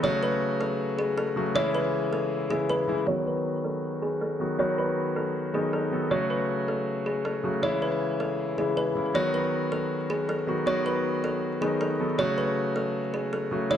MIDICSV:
0, 0, Header, 1, 3, 480
1, 0, Start_track
1, 0, Tempo, 379747
1, 46, Time_signature, 4, 2, 24, 8
1, 17405, End_track
2, 0, Start_track
2, 0, Title_t, "Kalimba"
2, 0, Program_c, 0, 108
2, 46, Note_on_c, 0, 73, 102
2, 227, Note_off_c, 0, 73, 0
2, 286, Note_on_c, 0, 71, 84
2, 467, Note_off_c, 0, 71, 0
2, 765, Note_on_c, 0, 69, 86
2, 947, Note_off_c, 0, 69, 0
2, 1246, Note_on_c, 0, 68, 78
2, 1427, Note_off_c, 0, 68, 0
2, 1485, Note_on_c, 0, 69, 85
2, 1937, Note_off_c, 0, 69, 0
2, 1966, Note_on_c, 0, 73, 107
2, 2147, Note_off_c, 0, 73, 0
2, 2205, Note_on_c, 0, 71, 85
2, 2387, Note_off_c, 0, 71, 0
2, 2686, Note_on_c, 0, 69, 82
2, 2867, Note_off_c, 0, 69, 0
2, 3166, Note_on_c, 0, 68, 82
2, 3347, Note_off_c, 0, 68, 0
2, 3406, Note_on_c, 0, 71, 90
2, 3857, Note_off_c, 0, 71, 0
2, 3886, Note_on_c, 0, 73, 99
2, 4067, Note_off_c, 0, 73, 0
2, 4125, Note_on_c, 0, 71, 76
2, 4307, Note_off_c, 0, 71, 0
2, 4605, Note_on_c, 0, 69, 76
2, 4787, Note_off_c, 0, 69, 0
2, 5086, Note_on_c, 0, 68, 80
2, 5267, Note_off_c, 0, 68, 0
2, 5326, Note_on_c, 0, 69, 82
2, 5777, Note_off_c, 0, 69, 0
2, 5805, Note_on_c, 0, 73, 99
2, 5987, Note_off_c, 0, 73, 0
2, 6045, Note_on_c, 0, 71, 82
2, 6226, Note_off_c, 0, 71, 0
2, 6525, Note_on_c, 0, 69, 81
2, 6707, Note_off_c, 0, 69, 0
2, 7005, Note_on_c, 0, 68, 82
2, 7187, Note_off_c, 0, 68, 0
2, 7245, Note_on_c, 0, 69, 83
2, 7696, Note_off_c, 0, 69, 0
2, 7725, Note_on_c, 0, 73, 98
2, 7906, Note_off_c, 0, 73, 0
2, 7965, Note_on_c, 0, 71, 77
2, 8147, Note_off_c, 0, 71, 0
2, 8446, Note_on_c, 0, 69, 77
2, 8627, Note_off_c, 0, 69, 0
2, 8925, Note_on_c, 0, 68, 73
2, 9107, Note_off_c, 0, 68, 0
2, 9165, Note_on_c, 0, 69, 81
2, 9616, Note_off_c, 0, 69, 0
2, 9645, Note_on_c, 0, 73, 104
2, 9826, Note_off_c, 0, 73, 0
2, 9885, Note_on_c, 0, 71, 79
2, 10067, Note_off_c, 0, 71, 0
2, 10366, Note_on_c, 0, 69, 78
2, 10547, Note_off_c, 0, 69, 0
2, 10845, Note_on_c, 0, 68, 76
2, 11027, Note_off_c, 0, 68, 0
2, 11086, Note_on_c, 0, 71, 83
2, 11537, Note_off_c, 0, 71, 0
2, 11565, Note_on_c, 0, 73, 100
2, 11747, Note_off_c, 0, 73, 0
2, 11806, Note_on_c, 0, 71, 79
2, 11987, Note_off_c, 0, 71, 0
2, 12285, Note_on_c, 0, 69, 80
2, 12466, Note_off_c, 0, 69, 0
2, 12765, Note_on_c, 0, 68, 80
2, 12947, Note_off_c, 0, 68, 0
2, 13005, Note_on_c, 0, 69, 85
2, 13457, Note_off_c, 0, 69, 0
2, 13485, Note_on_c, 0, 73, 97
2, 13667, Note_off_c, 0, 73, 0
2, 13725, Note_on_c, 0, 71, 82
2, 13907, Note_off_c, 0, 71, 0
2, 14206, Note_on_c, 0, 69, 83
2, 14387, Note_off_c, 0, 69, 0
2, 14685, Note_on_c, 0, 68, 86
2, 14867, Note_off_c, 0, 68, 0
2, 14925, Note_on_c, 0, 69, 82
2, 15376, Note_off_c, 0, 69, 0
2, 15405, Note_on_c, 0, 73, 102
2, 15587, Note_off_c, 0, 73, 0
2, 15646, Note_on_c, 0, 71, 77
2, 15827, Note_off_c, 0, 71, 0
2, 16125, Note_on_c, 0, 69, 81
2, 16307, Note_off_c, 0, 69, 0
2, 16605, Note_on_c, 0, 68, 76
2, 16787, Note_off_c, 0, 68, 0
2, 16846, Note_on_c, 0, 69, 82
2, 17297, Note_off_c, 0, 69, 0
2, 17326, Note_on_c, 0, 73, 105
2, 17405, Note_off_c, 0, 73, 0
2, 17405, End_track
3, 0, Start_track
3, 0, Title_t, "Grand piano"
3, 0, Program_c, 1, 0
3, 0, Control_c, 1, 64, 127
3, 37, Note_on_c, 1, 49, 107
3, 43, Note_on_c, 1, 54, 95
3, 49, Note_on_c, 1, 57, 95
3, 54, Note_on_c, 1, 66, 115
3, 63, Control_c, 1, 64, 0
3, 318, Control_c, 1, 64, 127
3, 769, Note_off_c, 1, 49, 0
3, 771, Note_off_c, 1, 54, 0
3, 774, Note_off_c, 1, 57, 0
3, 777, Note_off_c, 1, 66, 0
3, 1716, Note_on_c, 1, 49, 78
3, 1722, Note_on_c, 1, 54, 77
3, 1728, Note_on_c, 1, 57, 75
3, 1734, Note_on_c, 1, 66, 83
3, 1903, Note_off_c, 1, 49, 0
3, 1906, Note_off_c, 1, 54, 0
3, 1909, Note_off_c, 1, 57, 0
3, 1912, Note_off_c, 1, 66, 0
3, 1956, Note_on_c, 1, 49, 105
3, 1962, Note_on_c, 1, 52, 93
3, 1968, Note_on_c, 1, 56, 98
3, 1973, Note_on_c, 1, 64, 113
3, 1979, Control_c, 1, 64, 0
3, 2180, Control_c, 1, 64, 127
3, 2688, Note_off_c, 1, 49, 0
3, 2691, Note_off_c, 1, 52, 0
3, 2694, Note_off_c, 1, 56, 0
3, 2697, Note_off_c, 1, 64, 0
3, 3156, Note_on_c, 1, 49, 71
3, 3163, Note_on_c, 1, 52, 68
3, 3168, Note_on_c, 1, 56, 74
3, 3174, Note_on_c, 1, 64, 86
3, 3525, Note_off_c, 1, 49, 0
3, 3528, Note_off_c, 1, 52, 0
3, 3530, Note_off_c, 1, 56, 0
3, 3533, Note_off_c, 1, 64, 0
3, 3636, Note_on_c, 1, 49, 78
3, 3642, Note_on_c, 1, 52, 79
3, 3648, Note_on_c, 1, 56, 74
3, 3654, Note_on_c, 1, 64, 84
3, 3823, Note_off_c, 1, 49, 0
3, 3826, Note_off_c, 1, 52, 0
3, 3829, Note_off_c, 1, 56, 0
3, 3831, Note_off_c, 1, 64, 0
3, 3877, Note_on_c, 1, 51, 95
3, 3883, Note_on_c, 1, 54, 97
3, 3889, Note_on_c, 1, 59, 86
3, 3894, Note_on_c, 1, 66, 107
3, 3902, Control_c, 1, 64, 0
3, 4117, Control_c, 1, 64, 127
3, 4608, Note_off_c, 1, 51, 0
3, 4611, Note_off_c, 1, 54, 0
3, 4614, Note_off_c, 1, 59, 0
3, 4617, Note_off_c, 1, 66, 0
3, 5557, Note_on_c, 1, 51, 74
3, 5563, Note_on_c, 1, 54, 70
3, 5569, Note_on_c, 1, 59, 65
3, 5574, Note_on_c, 1, 66, 88
3, 5743, Note_off_c, 1, 51, 0
3, 5746, Note_off_c, 1, 54, 0
3, 5749, Note_off_c, 1, 59, 0
3, 5752, Note_off_c, 1, 66, 0
3, 5796, Note_on_c, 1, 51, 100
3, 5801, Note_on_c, 1, 54, 93
3, 5807, Note_on_c, 1, 59, 86
3, 5813, Note_on_c, 1, 66, 109
3, 6528, Note_off_c, 1, 51, 0
3, 6531, Note_off_c, 1, 54, 0
3, 6533, Note_off_c, 1, 59, 0
3, 6537, Note_off_c, 1, 66, 0
3, 6996, Note_on_c, 1, 51, 75
3, 7002, Note_on_c, 1, 54, 67
3, 7008, Note_on_c, 1, 59, 66
3, 7014, Note_on_c, 1, 63, 81
3, 7364, Note_off_c, 1, 51, 0
3, 7367, Note_off_c, 1, 54, 0
3, 7370, Note_off_c, 1, 59, 0
3, 7373, Note_off_c, 1, 63, 0
3, 7476, Note_on_c, 1, 51, 75
3, 7481, Note_on_c, 1, 54, 69
3, 7488, Note_on_c, 1, 59, 72
3, 7493, Note_on_c, 1, 69, 81
3, 7662, Note_off_c, 1, 51, 0
3, 7665, Note_off_c, 1, 54, 0
3, 7668, Note_off_c, 1, 59, 0
3, 7671, Note_off_c, 1, 69, 0
3, 7716, Note_on_c, 1, 49, 99
3, 7722, Note_on_c, 1, 54, 89
3, 7728, Note_on_c, 1, 57, 91
3, 7734, Note_on_c, 1, 66, 113
3, 7741, Control_c, 1, 64, 0
3, 7984, Control_c, 1, 64, 127
3, 8448, Note_off_c, 1, 49, 0
3, 8451, Note_off_c, 1, 54, 0
3, 8454, Note_off_c, 1, 57, 0
3, 8457, Note_off_c, 1, 66, 0
3, 9396, Note_on_c, 1, 49, 76
3, 9402, Note_on_c, 1, 54, 73
3, 9408, Note_on_c, 1, 57, 70
3, 9414, Note_on_c, 1, 66, 83
3, 9583, Note_off_c, 1, 49, 0
3, 9585, Note_off_c, 1, 54, 0
3, 9588, Note_off_c, 1, 57, 0
3, 9591, Note_off_c, 1, 66, 0
3, 9636, Note_on_c, 1, 49, 97
3, 9642, Note_on_c, 1, 52, 89
3, 9648, Note_on_c, 1, 56, 91
3, 9654, Note_on_c, 1, 64, 112
3, 9664, Control_c, 1, 64, 0
3, 9878, Control_c, 1, 64, 127
3, 10368, Note_off_c, 1, 49, 0
3, 10371, Note_off_c, 1, 52, 0
3, 10374, Note_off_c, 1, 56, 0
3, 10377, Note_off_c, 1, 64, 0
3, 10838, Note_on_c, 1, 49, 71
3, 10844, Note_on_c, 1, 52, 68
3, 10850, Note_on_c, 1, 56, 68
3, 10855, Note_on_c, 1, 64, 83
3, 11205, Note_off_c, 1, 49, 0
3, 11208, Note_off_c, 1, 52, 0
3, 11211, Note_off_c, 1, 56, 0
3, 11214, Note_off_c, 1, 64, 0
3, 11316, Note_on_c, 1, 49, 75
3, 11322, Note_on_c, 1, 52, 72
3, 11328, Note_on_c, 1, 56, 68
3, 11334, Note_on_c, 1, 64, 81
3, 11503, Note_off_c, 1, 49, 0
3, 11506, Note_off_c, 1, 52, 0
3, 11508, Note_off_c, 1, 56, 0
3, 11511, Note_off_c, 1, 64, 0
3, 11556, Note_on_c, 1, 51, 98
3, 11562, Note_on_c, 1, 54, 98
3, 11568, Note_on_c, 1, 59, 90
3, 11574, Note_on_c, 1, 66, 113
3, 11580, Control_c, 1, 64, 0
3, 11799, Control_c, 1, 64, 127
3, 12288, Note_off_c, 1, 51, 0
3, 12291, Note_off_c, 1, 54, 0
3, 12294, Note_off_c, 1, 59, 0
3, 12297, Note_off_c, 1, 66, 0
3, 13236, Note_on_c, 1, 51, 75
3, 13242, Note_on_c, 1, 54, 73
3, 13247, Note_on_c, 1, 59, 68
3, 13254, Note_on_c, 1, 66, 86
3, 13423, Note_off_c, 1, 51, 0
3, 13425, Note_off_c, 1, 54, 0
3, 13428, Note_off_c, 1, 59, 0
3, 13432, Note_off_c, 1, 66, 0
3, 13475, Note_on_c, 1, 51, 101
3, 13481, Note_on_c, 1, 54, 95
3, 13487, Note_on_c, 1, 59, 91
3, 13493, Note_on_c, 1, 66, 111
3, 14208, Note_off_c, 1, 51, 0
3, 14210, Note_off_c, 1, 54, 0
3, 14213, Note_off_c, 1, 59, 0
3, 14216, Note_off_c, 1, 66, 0
3, 14676, Note_on_c, 1, 51, 79
3, 14682, Note_on_c, 1, 54, 67
3, 14687, Note_on_c, 1, 59, 67
3, 14694, Note_on_c, 1, 63, 81
3, 15044, Note_off_c, 1, 51, 0
3, 15047, Note_off_c, 1, 54, 0
3, 15050, Note_off_c, 1, 59, 0
3, 15053, Note_off_c, 1, 63, 0
3, 15156, Note_on_c, 1, 51, 74
3, 15162, Note_on_c, 1, 54, 72
3, 15168, Note_on_c, 1, 59, 75
3, 15174, Note_on_c, 1, 69, 81
3, 15343, Note_off_c, 1, 51, 0
3, 15346, Note_off_c, 1, 54, 0
3, 15348, Note_off_c, 1, 59, 0
3, 15351, Note_off_c, 1, 69, 0
3, 15396, Note_on_c, 1, 49, 104
3, 15402, Note_on_c, 1, 54, 93
3, 15408, Note_on_c, 1, 57, 92
3, 15414, Note_on_c, 1, 66, 115
3, 15423, Control_c, 1, 64, 0
3, 15666, Control_c, 1, 64, 127
3, 16128, Note_off_c, 1, 49, 0
3, 16131, Note_off_c, 1, 54, 0
3, 16134, Note_off_c, 1, 57, 0
3, 16137, Note_off_c, 1, 66, 0
3, 17077, Note_on_c, 1, 49, 79
3, 17082, Note_on_c, 1, 54, 72
3, 17088, Note_on_c, 1, 57, 72
3, 17094, Note_on_c, 1, 66, 82
3, 17263, Note_off_c, 1, 49, 0
3, 17266, Note_off_c, 1, 54, 0
3, 17269, Note_off_c, 1, 57, 0
3, 17272, Note_off_c, 1, 66, 0
3, 17316, Note_on_c, 1, 49, 101
3, 17322, Note_on_c, 1, 52, 92
3, 17328, Note_on_c, 1, 56, 93
3, 17333, Note_on_c, 1, 64, 115
3, 17340, Control_c, 1, 64, 0
3, 17405, Note_off_c, 1, 49, 0
3, 17405, Note_off_c, 1, 52, 0
3, 17405, Note_off_c, 1, 56, 0
3, 17405, Note_off_c, 1, 64, 0
3, 17405, End_track
0, 0, End_of_file